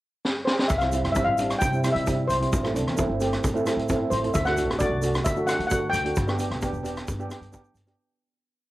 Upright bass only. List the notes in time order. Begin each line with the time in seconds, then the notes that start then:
0.69 C2
1.04 G2
1.26 A1
1.61 C3
1.95 C3
2.29 C2
2.53 A1
2.85 E2
3.09 G1
3.44 A2
3.76 A2
4.11 A1
4.35 D2
4.67 A1
4.89 C2
5.25 D3
5.59 D3
5.93 D2
6.17 G1
6.51 D2
6.73 E1
7.08 G2
7.41 G2
7.74 G1